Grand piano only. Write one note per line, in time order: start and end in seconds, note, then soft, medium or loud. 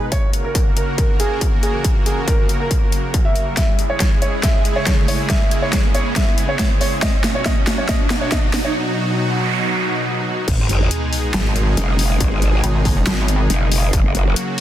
0.12 0.29 C#5 loud
0.44 0.62 A#4 medium
0.77 0.88 A#4 medium
0.98 1.10 A#4 medium
1.20 1.43 G#4 medium
1.63 1.86 G#4 medium
2.06 2.18 G#4 medium
2.28 2.45 A#4 medium
2.60 2.78 A#4 medium
3.25 3.42 E5 medium
3.57 3.75 E5 medium
3.90 4.07 C#5 medium
4.22 4.34 C#5 medium
4.43 4.61 E5 medium
4.76 4.93 C#5 medium
5.08 5.20 C#5 medium
5.30 5.47 E5 medium
5.62 5.80 C#5 medium
5.95 6.06 C#5 medium
6.16 6.34 E5 medium
6.49 6.66 C#5 medium
6.81 6.93 C#5 medium
7.02 7.20 D#5 loud
7.35 7.44 C#5 medium
7.46 7.63 D#5 loud
7.78 7.87 C#5 medium
7.89 8.06 D#5 loud
8.21 8.30 C#5 loud
8.32 8.50 D#5 loud
8.65 8.73 C#5 medium